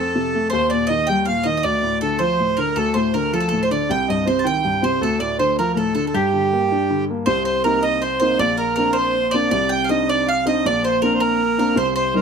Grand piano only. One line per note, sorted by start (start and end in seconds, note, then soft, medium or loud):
0.00 0.48 F2 medium
0.00 0.14 C4 medium
0.15 0.33 C3 medium
0.35 0.52 A3 medium
0.53 1.61 D#2 medium
0.72 0.89 A#2 medium
0.90 1.07 D#3 medium
1.09 1.27 G3 medium
1.27 1.45 A#2 medium
1.45 1.63 D#3 medium
1.65 2.74 D2 medium
1.83 2.01 A2 soft
2.02 2.20 D3 soft
2.20 2.38 F3 medium
2.39 2.57 A2 soft
2.58 2.76 D3 soft
2.76 3.86 D2 medium
2.95 3.14 A2 medium
3.14 3.33 D3 soft
3.33 3.51 F3 medium
3.52 3.70 A2 medium
3.71 3.89 D3 medium
3.89 4.99 C2 medium
4.09 4.27 G2 medium
4.27 4.45 C3 medium
4.44 4.63 D#3 medium
4.64 4.83 G2 medium
4.83 5.01 C3 medium
5.01 6.11 D2 medium
5.20 5.39 A2 medium
5.39 5.58 D3 medium
5.59 5.77 F3 medium
5.76 5.95 A2 medium
5.95 6.14 D3 medium
6.14 7.23 G2 medium
6.33 6.52 D3 soft
6.53 6.71 A#3 soft
6.72 6.90 D4 medium
6.90 7.08 D3 soft
7.10 7.27 A#3 medium
7.27 8.35 C2 medium
7.27 8.36 C3 medium
7.65 8.01 A#3 medium
7.65 8.01 C4 soft
7.65 8.01 D#4 medium
8.21 8.39 A#3 medium
8.21 8.39 C4 soft
8.21 8.39 D#4 medium
8.39 9.48 A#1 medium
8.39 9.48 A#2 medium
8.77 9.13 A#3 medium
8.77 9.14 C4 soft
8.77 9.14 D4 medium
9.34 9.52 A#3 medium
9.34 9.52 C4 medium
9.34 9.52 D4 medium
9.51 10.60 C2 medium
9.51 10.60 C3 medium
9.89 10.26 C4 medium
9.89 10.26 D4 soft
9.89 10.26 D#4 medium
10.46 10.64 C4 medium
10.46 10.64 D4 soft
10.46 10.64 D#4 medium
10.65 11.73 A#1 medium
10.65 11.73 A#2 medium
11.02 11.38 A#3 medium
11.02 11.38 C4 soft
11.02 11.39 D4 medium
11.58 11.76 A#3 medium
11.58 11.76 C4 soft
11.58 11.76 D4 medium
11.76 12.22 C2 medium
11.76 12.22 C3 medium
12.14 12.22 G3 soft
12.14 12.22 C4 soft
12.14 12.22 D#4 medium